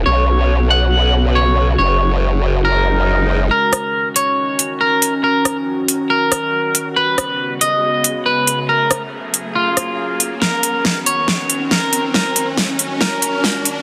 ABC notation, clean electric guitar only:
X:1
M:4/4
L:1/16
Q:"Swing 16ths" 1/4=139
K:Ebm
V:1 name="Clean electric guitar"
^c6 ^f6 c3 z | d3 z4 z B8 | B6 d6 B3 z | B3 z4 z B8 |
=B6 e6 B3 z | B3 z4 z F8 | B6 d6 B3 z | B3 z4 z B8 |]